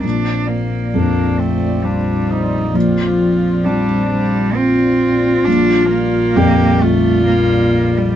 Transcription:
X:1
M:3/4
L:1/16
Q:1/4=66
K:Bb
V:1 name="Analog synth pad"
[CFd]12- | [CFd]12 | [G,Fd]12 |]
V:2 name="Viola"
z4 D2 C2 D2 E2 | F4 D4 F4- | F4 G2 F6 |]
V:3 name="Cello"
D2 B,4 A,2 G,4 | F,4 G,2 G,2 C4 | D2 B,4 A,2 B,3 G, |]
V:4 name="Felt piano" clef=bass
B,,,4 F,,8 | B,,,4 C8 | B,,,4 F,,8 |]
V:5 name="Double bass" clef=bass
B,,,12- | B,,,12 | B,,,12 |]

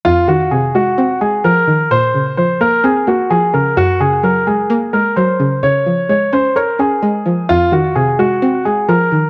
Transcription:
X:1
M:4/4
L:1/8
Q:1/4=129
K:Fphr
V:1 name="Grand piano"
F G A G2 A B2 | c2 c B A G A B | G A B A2 B c2 | d2 d c B A3 |
F G A G2 A B2 |]
V:2 name="Synth pluck" clef=bass
F,, E, C, A, C A, F, E, | B,, D, F, B, C B, F, D, | G,, D, G, A, B, A, G, D, | D, F, A, D d D A, F, |
F,, E, C, A, C A, F, E, |]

